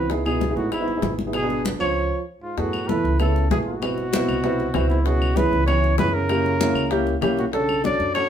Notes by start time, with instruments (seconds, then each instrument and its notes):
Already playing: upright bass C#2, trombone E3, trumpet B4
0.10 grand piano B3 D#4 E4 G#4, high bongo, high conga
0.25 trombone B2, grand piano B3 D#4 E4 G#4, trumpet G#4, high conga, claves
0.41 high bongo, high conga
0.49 grand piano B3 D#4 E4 G#4
0.56 upright bass G#1, trombone A2, trumpet F#4, high conga
0.72 trombone G#2, trumpet E4, high bongo, high conga, claves
0.80 grand piano B3 D#4 E4 F#4
0.88 high conga
0.96 grand piano B3 D#4 E4 G#4
1.02 upright bass G#1, high bongo, low bongo, high conga
1.19 high conga
1.26 grand piano B3 D#4 E4 G#4
1.33 trombone B2, trumpet G#4, high bongo, high conga, claves
1.42 grand piano B3 D4 F#4 G#4
1.50 high bongo, high conga
1.65 high bongo, high conga
1.79 upright bass C#2, trombone F3, trumpet C#5, high conga, claves
2.41 trombone G#2, trumpet F4
2.57 upright bass F#2, trombone A2, grand piano A3 B3 E4 G#4, trumpet F#4, high bongo, high conga
2.73 high conga, claves
2.88 trombone E3, grand piano A3 B3 E4 A4, trumpet B4, high bongo, high conga
3.04 upright bass C#2, high conga
3.20 trombone C#3, grand piano A3 B3 E4 A4, trumpet A4, high bongo, high conga, claves
3.36 high conga
3.50 upright bass G#1, trombone B2, grand piano A3 B3 E4 G#4, trumpet G#4, high bongo, low bongo, high conga
3.65 trombone B2, trumpet F#4
3.81 grand piano B3 C4 E4 F#4, high bongo, high conga, claves
3.97 high bongo, high conga
4.13 grand piano B3 C4 E4 F#4, high bongo, high conga
4.28 upright bass C2, high conga, claves
4.43 grand piano B3 C4 E4 F#4, high bongo, high conga
4.59 high bongo, high conga
4.74 upright bass C#2, grand piano B3 C4 E4 F#4, high bongo, low bongo, high conga, claves
4.90 trombone G#2, trumpet E4, high bongo, high conga
5.05 trombone B2, grand piano B3 C#4 E4 G#4, trumpet F#4, high bongo, high conga
5.22 high conga, claves
5.36 trombone E3, grand piano B3 C#4 E4 G#4, trumpet B4, high bongo, high conga
5.52 upright bass C#2, high conga
5.67 trombone E3, grand piano B3 C#4 E4 F#4, trumpet C#5, high bongo, high conga, claves
5.84 high conga
5.98 upright bass F#2, trombone E3, grand piano B3 C#4 E4 G#4, trumpet B4, high bongo, low bongo, high conga
6.14 trombone C#3, trumpet A#4
6.29 grand piano A#3 C#4 E4 G4, high bongo, high conga, claves
6.45 high bongo, high conga
6.60 grand piano A#3 C#4 E4 F#4, high bongo, high conga
6.75 upright bass C#2, high conga, claves
6.90 grand piano A#3 C#4 E4 G4, high bongo, high conga
7.06 high bongo, high conga
7.21 upright bass B1, grand piano A#3 C#4 E4 G4, high bongo, low bongo, high conga, claves
7.37 trombone A#2, trumpet F#4, high bongo, high conga
7.53 trombone C#3, grand piano C#4 D4 F#4 A4, trumpet A4, high bongo, high conga
7.69 high conga, claves
7.84 trombone F#3, grand piano C#4 D4 F#4 A4, trumpet D5, high bongo, high conga
7.99 upright bass F#2, high conga
8.15 trombone F#3, grand piano C#4 D4 F#4 A4, trumpet C#5, high bongo, high conga, claves